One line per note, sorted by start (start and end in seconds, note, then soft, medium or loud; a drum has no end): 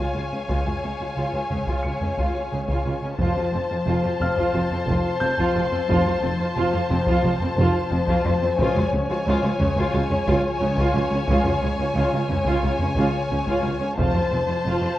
0.00 0.49 C#3 medium
0.00 0.70 G#3 soft
0.00 0.14 C#4 soft
0.00 0.15 F4 medium
0.00 3.15 C#5 soft
0.00 0.79 F5 soft
0.00 2.83 F5 soft
0.00 2.83 G#5 soft
0.00 3.15 G#5 soft
0.00 0.80 F6 soft
0.15 0.22 C#2 soft
0.15 0.81 C#4 soft
0.15 0.23 F4 soft
0.32 0.39 C#2 soft
0.32 0.39 C#4 soft
0.48 0.55 C#2 medium
0.48 0.56 C#2 medium
0.48 1.15 C#3 medium
0.48 0.65 F4 medium
0.48 taiko medium
0.66 0.73 C#2 soft
0.66 0.73 F4 soft
0.66 taiko low soft
0.83 0.90 C#2 soft
0.83 0.91 C#2 soft
0.83 1.83 C#4 soft
0.83 0.90 C#4 soft
1.00 1.07 C#2 soft
1.00 1.07 F4 soft
1.16 1.23 C#2 medium
1.16 1.23 C#2 soft
1.16 1.50 C#3 soft
1.16 1.33 F4 medium
1.33 1.40 C#2 soft
1.33 1.41 F4 soft
1.50 1.57 C#2 soft
1.50 2.16 C#3 medium
1.50 1.58 C#4 soft
1.50 taiko low medium
1.67 1.74 C#2 medium
1.67 1.84 F4 medium
1.67 taiko medium
1.83 1.91 C#2 soft
1.83 1.92 C#2 soft
1.83 2.84 C#4 soft
1.83 1.92 F4 medium
1.83 3.82 C#7 soft
2.01 2.08 C#2 medium
2.01 2.08 C#4 medium
2.01 taiko low soft
2.18 2.25 C#2 medium
2.18 2.50 C#3 soft
2.18 2.35 F4 medium
2.18 taiko medium
2.51 2.58 C#2 soft
2.51 2.59 C#2 soft
2.51 3.22 C#3 medium
2.51 2.59 C#4 soft
2.68 2.75 C#2 medium
2.68 2.86 F4 medium
2.68 taiko medium
2.85 2.92 C#2 soft
2.85 2.93 C#2 soft
2.85 3.22 C#4 soft
2.85 2.93 F4 medium
3.02 3.09 C#2 soft
3.02 3.10 C#4 medium
3.18 3.26 F1 medium
3.18 3.85 F2 medium
3.18 3.26 F2 medium
3.18 3.36 F4 medium
3.18 8.54 C5 medium
3.18 8.54 A5 medium
3.18 8.21 A5 soft
3.18 taiko medium
3.36 3.43 F2 soft
3.36 3.44 F4 soft
3.36 taiko low soft
3.52 3.59 F1 medium
3.52 3.60 F2 soft
3.52 4.53 F3 medium
3.52 3.59 C4 soft
3.70 3.76 F2 medium
3.70 3.77 F4 soft
3.85 3.93 F1 medium
3.85 4.19 F2 medium
3.85 3.93 F2 medium
3.85 4.02 F4 medium
3.85 8.22 C6 soft
4.03 4.10 F2 medium
4.03 4.11 F4 medium
4.20 4.27 F1 soft
4.20 4.86 F2 medium
4.20 4.27 F2 medium
4.20 4.27 C4 medium
4.20 6.19 F5 soft
4.20 6.19 F6 medium
4.20 taiko low medium
4.36 4.43 F2 medium
4.36 4.52 F4 medium
4.36 taiko medium
4.53 4.61 F1 medium
4.53 4.60 F2 medium
4.53 5.53 F3 medium
4.53 4.60 F4 medium
4.70 4.77 F2 medium
4.70 4.78 C4 medium
4.70 taiko low soft
4.87 4.94 F1 medium
4.87 4.94 F2 medium
4.87 5.19 F2 medium
4.87 5.04 F4 medium
4.87 taiko medium
5.20 5.28 F1 medium
5.20 5.27 F2 medium
5.20 5.88 F2 medium
5.20 5.29 C4 medium
5.20 7.19 G6 medium
5.37 5.44 F2 medium
5.37 5.54 F4 medium
5.37 taiko medium
5.55 5.62 F1 medium
5.55 5.62 F2 medium
5.55 6.21 F3 medium
5.55 5.63 F4 medium
5.72 5.78 F2 medium
5.72 5.79 C4 medium
5.88 5.96 F1 medium
5.88 5.95 F2 medium
5.88 6.55 F2 medium
5.88 6.05 F4 medium
5.88 taiko medium
6.05 6.12 F2 medium
6.05 6.13 F4 medium
6.05 taiko low soft
6.22 6.30 F1 medium
6.22 6.29 F2 medium
6.22 7.22 F3 medium
6.22 6.29 C4 medium
6.39 6.46 F2 medium
6.39 6.46 F4 medium
6.56 6.63 F1 medium
6.56 6.63 F2 medium
6.56 6.89 F2 medium
6.56 6.72 F4 medium
6.73 6.80 F2 medium
6.73 6.80 F4 medium
6.90 6.97 F1 medium
6.90 7.56 F2 loud
6.90 6.97 F2 medium
6.90 6.97 C4 medium
6.90 taiko low medium
7.07 7.14 F2 medium
7.07 7.23 F4 medium
7.07 taiko medium
7.22 7.31 F1 medium
7.22 7.29 F2 medium
7.22 8.24 F3 medium
7.22 7.31 F4 medium
7.40 7.47 F2 medium
7.40 7.48 C4 medium
7.40 taiko low soft
7.57 7.65 F1 loud
7.57 7.63 F2 medium
7.57 7.89 F2 medium
7.57 7.74 F4 medium
7.57 taiko medium
7.91 7.98 F1 medium
7.91 8.61 F2 medium
7.91 7.98 F2 medium
7.91 7.98 C4 medium
8.07 8.14 F2 loud
8.07 8.24 F4 medium
8.07 taiko medium
8.25 8.32 F1 medium
8.25 8.31 F2 medium
8.25 12.15 F3 medium
8.25 8.33 F4 medium
8.42 8.48 F2 medium
8.42 8.50 C4 medium
8.58 8.65 C#2 medium
8.58 8.66 C#2 medium
8.58 9.25 C#3 medium
8.58 8.75 F4 medium
8.58 13.94 C#5 medium
8.58 13.93 G#5 medium
8.58 taiko loud
8.75 8.82 C#2 medium
8.75 8.83 F4 medium
8.75 taiko low soft
8.91 8.98 C#2 medium
8.91 9.00 C#2 medium
8.91 9.92 C#4 medium
8.91 9.00 C#4 medium
9.08 9.15 C#2 medium
9.08 9.17 F4 medium
9.25 9.32 C#2 medium
9.25 9.34 C#2 medium
9.25 9.58 C#3 medium
9.25 9.42 F4 medium
9.43 9.50 C#2 medium
9.43 9.50 F4 medium
9.59 9.66 C#2 medium
9.59 9.67 C#2 medium
9.59 10.25 C#3 loud
9.59 9.67 C#4 medium
9.59 taiko low medium
9.76 9.83 C#2 medium
9.76 9.92 F4 loud
9.76 taiko medium
9.93 10.00 C#2 medium
9.93 10.01 C#2 medium
9.93 10.93 C#4 medium
9.93 10.00 F4 medium
10.10 10.17 C#2 medium
10.10 10.17 C#4 medium
10.10 taiko low soft
10.26 10.33 C#2 medium
10.26 10.35 C#2 medium
10.26 10.59 C#3 medium
10.26 10.43 F4 medium
10.26 taiko medium
10.60 10.67 C#2 medium
10.60 10.68 C#2 medium
10.60 11.27 C#3 medium
10.60 10.68 C#4 medium
10.76 10.83 C#2 medium
10.76 10.94 F4 medium
10.76 taiko medium
10.93 11.00 C#2 medium
10.93 11.03 C#2 medium
10.93 11.61 C#4 medium
10.93 11.03 F4 medium
11.11 11.17 C#2 medium
11.11 11.19 C#4 medium
11.28 11.35 C#2 medium
11.28 11.36 C#2 loud
11.28 11.94 C#3 medium
11.28 11.44 F4 medium
11.28 taiko medium
11.44 11.51 C#2 medium
11.44 11.52 F4 medium
11.44 taiko low soft
11.62 11.69 C#2 medium
11.62 11.70 C#2 medium
11.62 11.69 C#4 medium
11.62 12.63 C#4 medium
11.79 11.85 C#2 medium
11.79 11.86 F4 medium
11.95 12.02 C#2 medium
11.95 12.03 C#2 medium
11.95 12.28 C#3 medium
11.95 12.11 F4 medium
12.13 12.20 C#2 medium
12.13 12.19 F4 medium
12.29 12.36 C#2 medium
12.29 12.37 C#2 medium
12.29 12.95 C#3 medium
12.29 12.37 C#4 medium
12.29 taiko low medium
12.45 12.53 C#2 medium
12.45 12.62 F4 medium
12.45 taiko medium
12.63 12.70 C#2 medium
12.63 13.64 C#4 medium
12.63 12.70 F4 medium
12.79 12.87 C#2 medium
12.79 12.87 C#4 medium
12.79 taiko low soft
12.95 13.04 C#2 medium
12.95 13.30 C#3 medium
12.95 13.13 F4 medium
12.95 taiko medium
13.31 13.38 C#2 medium
13.31 14.01 C#3 medium
13.31 13.38 C#4 medium
13.47 13.54 C#2 medium
13.47 13.63 F4 medium
13.47 taiko medium
13.63 13.70 C#2 medium
13.63 13.72 C#2 medium
13.63 14.01 C#4 medium
13.63 13.71 F4 medium
13.80 13.87 C#2 medium
13.80 13.88 C#4 medium
13.97 14.05 F1 medium
13.97 14.04 F2 medium
13.97 14.65 F2 medium
13.97 14.14 F4 medium
13.97 14.99 C5 medium
13.97 14.99 A5 medium
13.97 taiko medium
14.14 14.21 F2 medium
14.14 14.22 F4 soft
14.14 taiko low soft
14.31 14.39 F1 soft
14.31 14.38 F2 soft
14.31 14.99 F3 medium
14.31 14.39 C4 medium
14.47 14.54 F2 medium
14.47 14.56 F4 soft
14.65 14.73 F1 medium
14.65 14.72 F2 medium
14.65 14.98 F2 soft
14.65 14.82 F4 medium
14.65 14.99 B5 soft
14.81 14.88 F2 medium
14.81 14.90 F4 medium